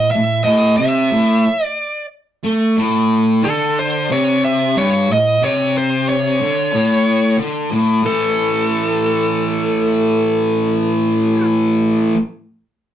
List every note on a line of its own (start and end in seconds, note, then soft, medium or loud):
0.00 0.11 D#5 medium
0.11 0.40 A2 medium
0.11 0.44 E5 loud
0.44 0.77 A2 medium
0.44 0.75 D#5 medium
0.78 1.10 C3 loud
0.78 1.65 E5 medium
1.11 1.43 A2 loud
1.65 2.06 D5 medium
2.44 2.76 A3 medium
2.77 3.42 A2 loud
3.42 4.08 D3 loud
3.42 3.78 A4 medium
3.79 4.08 C5 medium
4.09 4.74 C3 loud
4.09 4.41 C#5 loud
4.44 4.77 E5 medium
4.75 5.07 G2 medium
4.75 5.10 C#5 loud
5.08 5.34 A2 medium
5.13 5.44 D#5 medium
5.42 6.40 C3 loud
5.42 5.77 C#5 loud
5.78 6.07 C5 medium
6.09 7.36 C#5 medium
6.41 6.72 D3 loud
6.73 7.38 A2 medium
7.38 7.71 D3 medium
7.71 8.02 A2 loud
8.03 12.13 A2 loud
8.03 12.15 E3 medium
8.03 12.17 A3 loud
8.03 11.46 A4 medium